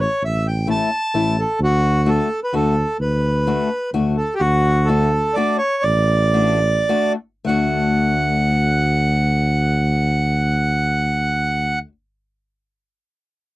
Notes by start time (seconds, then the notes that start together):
0.00 C#5
0.22 A1 E5
0.47 G5
0.67 A3 C#4 E4 A5
1.14 A1 A3 C#4 E4
1.39 A4
1.60 D2 F#4
2.06 A3 D4 F#4 A4
2.44 B4
2.53 D2 A3 D4 F#4 A4
3.00 D2 B4
3.47 A3 D4 F#4
3.93 D2 A3 D4 F#4
4.17 A4
4.35 G4
4.40 D2 F#4
4.85 A3 D4 A4
4.89 F#4
5.34 A3 D4 F#4 D5
5.58 C#5
5.83 A1 D5
6.34 A3 D4 F#4
6.89 A3 D4 F#4
7.44 D2 A3 D4 F#5
7.49 F#4